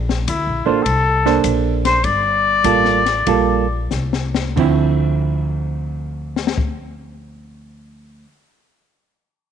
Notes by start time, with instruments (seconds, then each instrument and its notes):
Already playing: upright bass A#1
0.09 snare
0.28 upright bass D2, trumpet E4, kick, hi-hat pedal, ride
0.47 upright bass A#1
0.66 upright bass A1, hollow-body jazz guitar A#3 D4 A4 C5, trumpet F4
0.83 upright bass C2, trumpet A4, kick, ride
1.26 hollow-body jazz guitar A#3 D4 A4 C5, snare
1.44 upright bass A#1, kick, hi-hat pedal, ride
1.85 trumpet C5, snare, ride
2.04 upright bass G1, trumpet D5, kick, ride
2.64 upright bass A1, hollow-body jazz guitar G3 A#3 F4 A4, kick, hi-hat pedal, ride
2.85 snare
3.06 snare, ride
3.27 upright bass A#1, hollow-body jazz guitar G3 A#3 F4 A4, kick, ride
3.91 upright bass C2, snare, hi-hat pedal
4.13 snare
4.35 snare
4.56 upright bass D2, hollow-body jazz guitar D3 F3 C4 E4, kick, crash
6.36 snare
6.47 snare
6.58 kick